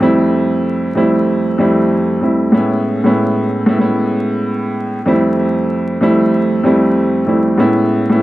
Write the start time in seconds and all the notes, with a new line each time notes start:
0.00 F2 G3 A3 C4 E4
0.95 F2 G3 A3 C4 E4
1.58 F2 G3 A3 C4 E4
2.21 F2 G3 A3 C4 E4
2.52 A2 G#3 B3 C#4 E4
3.04 A2 G#3 B3 C#4 E4
3.66 A2 G#3 B3 C#4 E4
3.79 A2 G#3 B3 C#4 E4
5.06 F2 G3 A3 C4 E4
6.00 F2 G3 A3 C4 E4
6.63 F2 G3 A3 C4 E4
7.26 F2 G3 A3 C4 E4
7.57 A2 G#3 B3 C#4 E4
8.09 A2 G#3 B3 C#4 E4